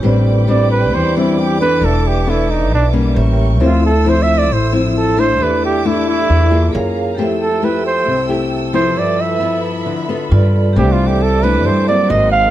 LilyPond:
<<
  \new Staff \with { instrumentName = "Violin section" } { \time 4/4 \key c \major \tempo 4 = 134 << { d'''1~ | d'''2. cis'''4 | e'''1 | d'''2. ais''4 |
e'''1~ | e'''2. r4 | d'''2. c'''4 | } \\ { <g'' b''>1 | <a' e''>2. <bes' g''>4 | c''1 | <a' e''>2. <gis' eis''>4 |
<a' g''>1 | <e'' b''>1 | <a' e''>2. <bes' ges''>4 | } >> }
  \new Staff \with { instrumentName = "Flugelhorn" } { \time 4/4 \key c \major r4 d''8 b'8 c''8 e'8 g'8 b'8 | a'8 g'8 e'8 ees'8 d'8 r4. | f'8 a'8 \tuplet 3/2 { c''8 e''8 d''8 } c''8 e'8 a'8 c''8 | b'8 g'8 e'8 e'4. r4 |
r8 a'8 b'8 c''4 r4 c''8 | d''8 e''4 r2 r8 | \tuplet 3/2 { g'8 f'8 g'8 } a'8 b'8 c''8 d''8 ees''8 f''8 | }
  \new Staff \with { instrumentName = "Vibraphone" } { \time 4/4 \key c \major <g' b' c'' d''>1 | <a' b' d'' e''>2. <g' bes' cis'' e''>4 | <a' c'' e''>1 | <g' a' d'' e''>2. <gis' ais' cis'' eis''>4 |
<g' a' c'' e''>2.~ <g' a' c'' e''>8 <g' a' c'' e''>8 | <a' b' e''>2. <f' a' b' d''>4 | <g' a' d'' e''>2. <ges' bes' c'' ees''>4 | }
  \new Staff \with { instrumentName = "Nylon-string guitar" } { \time 4/4 \key c \major << { <g c' d'>4 <g c' d'>4. <g c' d'>4 <b d' a'>8~ | <b d' a'>4 <b d' a'>4 r8 <g bes des'>4. | <f c' e'>8 r8 <f c' e'>4 r8 <f c' e'>4 <a d' e'>8~ | <a d' e'>4 <a d' e'>4. <bes f' aes'>4. |
<a e' g'>8 r8 <a e' g'>4 r8 <a e' g'>4 <f b e'>8~ | <f b e'>4 <f b e'>4. <b f' a'>4. | <e a d'>4 r8 <e a d'>4 <fis bes c'>4. | } \\ { a,2 e2 | e2 b,4 r4 | d2 a,2 | e2 e4 r4 |
f2 c2 | g,2 d4 r4 | c2 g,4 r4 | } >> }
  \new Staff \with { instrumentName = "Upright bass" } { \clef bass \time 4/4 \key c \major a,,2 e,2 | e,,2 b,,4 a,,4 | d,2 a,,2 | e,2 e,4 fis,4 |
f,2 c,2 | g,2 d,4 g,4 | c,2 g,4 aes,,4 | }
>>